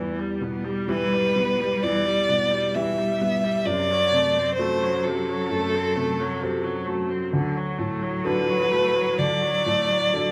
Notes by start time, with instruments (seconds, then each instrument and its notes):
Already playing: upright piano E2, viola E3, cello G3
0.19 viola G3
0.40 upright piano B2, viola B3
0.65 viola G3
0.88 viola E3, upright piano G3 E4 G4, violin B4
1.13 viola G3
1.36 upright piano G3, viola B3
1.60 viola G3
1.83 upright piano E2, viola E3, violin D5
2.06 viola G3
2.29 upright piano B2, viola B3
2.51 viola G3
2.75 viola E3, upright piano G3 E4 G4, violin E5
2.98 viola G3
3.21 upright piano G3, viola B3
3.44 viola G3
3.65 upright piano F#2, viola C3, cello F#3, violin D5
3.91 viola F#3
4.11 upright piano C3, viola A3
4.38 viola C4
4.55 upright piano F#3, violin C5
4.59 viola A3, upright piano C4 A4
4.83 viola F#3
5.04 viola C3, upright piano F#3, violin A4
5.29 viola F#3
5.49 upright piano F#2, viola A3
5.75 viola C4
5.96 upright piano C3, viola A3
6.20 viola F#3
6.42 viola C3, upright piano F#3 C4 A4
6.64 viola F#3
6.86 upright piano F#3, viola A3
7.10 viola C4
7.33 upright piano D2, viola D3, cello F#3
7.57 viola F#3
7.78 upright piano A2, viola A3
8.02 viola F#3
8.25 viola D3, upright piano F#3 D4 A4, violin B4
8.49 viola F#3
8.72 upright piano F#3, viola A3
8.95 viola F#3
9.18 upright piano D2, viola D3, violin D5
9.43 viola F#3
9.66 upright piano A2, viola A3
9.90 viola F#3
10.13 viola D3, upright piano F#3 D4 A4